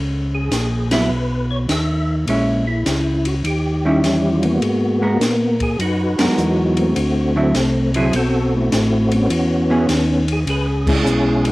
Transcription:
Already playing: C#2
0.35 G#4
0.51 A#1, snare, hi-hat pedal, ride
0.91 F#3 B3 E4 B4, snare, ride
1.09 B1
1.51 C#5
1.68 D#2 E5, snare, hi-hat pedal, ride
2.27 A#1 G#3 C#4 E4, ride
2.67 E4
2.86 C#2, snare, hi-hat pedal, ride
3.25 F#4, ride
3.44 D#2 G4, ride
3.84 D#3 G3 C#4 E4
4.02 E2, snare, hi-hat pedal, ride
4.35 F4
4.43 A#3 B3 F#4, ride
4.61 G#2, ride
5.02 G#3 B3 F#4 A#4
5.20 A#2, snare, hi-hat pedal, ride
5.60 G#4, kick, ride
5.79 F#2 D#4 F#4 B4, ride
6.18 F#2 F#3 G#3 B3 D#4 F#4 A#4, snare, ride
6.37 E2, hi-hat pedal
6.77 A3 C4 F#4, ride
6.96 D2, ride
7.36 D3 F#3 C4 E4
7.54 C2, snare, hi-hat pedal, ride
7.94 D3 F#3 C4 E4 G#4, ride
8.13 B1 C4 F#4 A4, ride
8.56 A3 C4 E4
8.72 A1, snare, hi-hat pedal, ride
9.12 B3 C#4, ride
9.16 F#4
9.30 E2, ride
9.70 E3 B3 C#4 G#4
9.88 D#2, snare, hi-hat pedal, ride
10.28 ride
10.32 G#4
10.46 C#2 G#4 B4, ride
10.87 G#3 C#4 E4, kick, crash
11.04 B1, hi-hat pedal
11.45 A#3 D#4 F#4, ride

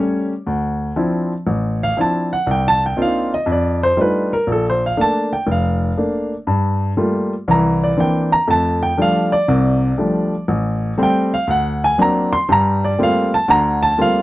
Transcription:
Already playing: G3 A3 C#4 C#5
0.47 D2
0.96 F3 C4 D4 E4
1.47 A1
1.83 F5
1.97 F3 C4 D4 E4
2.01 A5
2.33 F#5
2.47 C2
2.51 G5
2.68 A5
2.86 G5
2.97 A#3 C4 D4 D#4 F4
3.02 F5
3.34 D#5
3.46 F2
3.52 D5
3.83 C5
3.97 G3 A3 D4 D#4 F4
4.01 B4
4.33 A#4
4.47 A#1
4.52 A4
4.70 C5
4.86 F5
4.97 A3 A#3 D4
5.01 A5
5.33 G5
5.47 F1
5.52 F5
5.97 A3 A#3 D4
6.47 G2
6.97 G3 A3 A#3 F4
7.48 C2 E3 A#5
7.84 D5
7.97 E3 A#3 C4 D4 G5
8.32 A#5
8.47 F2 A3 A5
8.83 G5
8.97 F3 G3 A3 D4
9.02 F5
9.32 D5
9.48 C2 C3
9.98 F3 G3 A3 D4
10.48 A1
10.98 G3 A3 C4
11.03 G5
11.34 F5
11.47 D2 F#5
11.84 G#5
11.98 F#3 A#3 C4 D4 A#5
12.33 C6
12.49 G2 G3 A#5
12.84 D5
12.99 G3 A3 A#3 C4 F4
13.03 F5
13.34 A5
13.48 D2 D3 A#5
13.83 A5
13.98 G3 A3 A#3 C4 F4 F5

